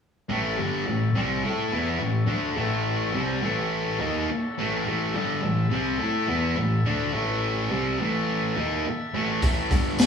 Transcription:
0.29 A1 A2 E3 A3 E4 A4 C#5
0.57 G1 G2 D3 G3
0.85 A1 A2 E3
1.15 C2 C3 G3 C4
1.44 A2 A3 E4 A4
1.72 E2 E3 B3 E4
2.00 A1 A2 E3
2.27 D2 D3 A3 D4
2.57 A1 A2 E3 A3
3.14 C2 C3 G3 C4
3.43 A1 A2 E3 A3
3.99 D#2 D#3 A#3 D#4
4.29 muted picked electric bass stroke, muted distorted electric guitar stroke
4.58 A1 A2 E3 A3
4.86 A1 A2 E3 A3 E4 A4 E5
5.14 G1 G2 D3 G3
5.42 A1 A2 E3
5.70 C2 C3 G3 C4
5.98 A2 A3 E4 A4
6.27 E2 E3 B3 E4
6.57 A1 A2 E3
6.85 D2 D3 A3 D4
7.13 A1 A2 E3 A3
7.70 C2 C3 G3 C4
7.98 A1 A2 E3 A3
8.56 D#2 D#3 A#3 D#4
8.85 muted picked electric bass stroke, muted distorted electric guitar stroke
9.13 A1 A2 E3 A3
9.41 A1 A2 E3 A3 E4 A4 C#5, kick, open hi-hat
9.70 G1 G2 D3 G3, kick, open hi-hat, tambourine
9.98 A1 A2 E3, snare, open hi-hat, tambourine

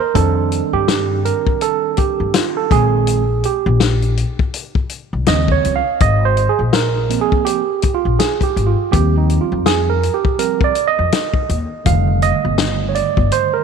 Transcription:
0.00 A#4
0.14 F2 D#3 G3 C4 D4 A4, kick, closed hi-hat
0.52 closed hi-hat
0.73 G2 G4
0.88 snare, closed hi-hat
1.25 A#4, closed hi-hat
1.47 kick
1.61 A4, closed hi-hat
1.97 G4, kick, closed hi-hat
2.20 G2
2.34 F4, snare, closed hi-hat
2.57 A4
2.71 A#1 D#3 G#3 C4 G#4, kick, closed hi-hat
3.07 closed hi-hat
3.44 G4, closed hi-hat
3.66 A#1
3.80 snare, closed hi-hat
4.02 closed hi-hat
4.17 closed hi-hat
4.39 kick
4.54 closed hi-hat
4.75 kick
4.89 closed hi-hat
5.13 C2
5.26 D#2 C#3 F3 G3 C4 D#5, snare, closed hi-hat
5.48 C#5, kick
5.65 C#2, closed hi-hat
5.76 F5
6.00 G#1 D#5, kick, closed hi-hat
6.25 C5
6.37 closed hi-hat
6.49 G#4
6.59 A#1
6.73 A#4, snare, closed hi-hat
7.09 F3 A#3 C4, closed hi-hat
7.21 G#4
7.32 kick
7.45 G4, closed hi-hat
7.82 kick, closed hi-hat
7.94 F4
8.05 A#1
8.19 G#4, snare, closed hi-hat
8.41 G4, kick, closed hi-hat
8.56 G#1, closed hi-hat
8.67 F4
8.91 D#2 F3 G3 C4 G4, kick, closed hi-hat
9.18 D#4
9.30 closed hi-hat
9.41 F4
9.52 F2
9.66 G#4, snare, closed hi-hat
9.90 A#4
10.03 closed hi-hat
10.14 G4
10.25 kick
10.38 F3 G3 C4 A#4, closed hi-hat
10.61 D5, kick
10.75 closed hi-hat
10.88 D#5
10.99 F2
11.12 snare, closed hi-hat
11.34 kick
11.49 D#2, closed hi-hat
11.85 F1 D3 D#3 G3 A3 F5, kick, closed hi-hat
12.22 D#5, closed hi-hat
12.45 G1
12.58 snare, closed hi-hat
12.89 C#5
12.95 D5, closed hi-hat
13.17 G1, kick
13.32 C5, closed hi-hat
13.54 A#4

